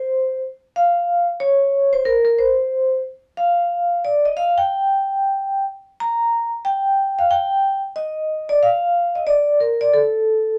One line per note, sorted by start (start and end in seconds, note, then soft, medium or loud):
0.00 0.39 C5 medium
0.76 1.25 F5 medium
1.40 1.90 C#5 medium
1.93 2.06 C5 medium
2.05 2.23 A#4 medium
2.25 2.30 A#4 medium
2.38 3.00 C5 medium
3.37 4.04 F5 medium
4.05 4.25 D5 medium
4.25 4.30 D#5 medium
4.37 4.57 F5 medium
4.58 5.63 G5 medium
6.00 6.49 A#5 loud
6.65 7.20 G5 medium
7.19 7.30 F5 medium
7.31 7.80 G5 medium
7.96 8.50 D#5 medium
8.49 8.61 D5 medium
8.63 9.17 F5 medium
9.15 9.20 D#5 medium
9.27 9.57 D5 medium
9.60 9.79 A#4 medium
9.81 9.91 D5 medium
9.94 10.58 A4 medium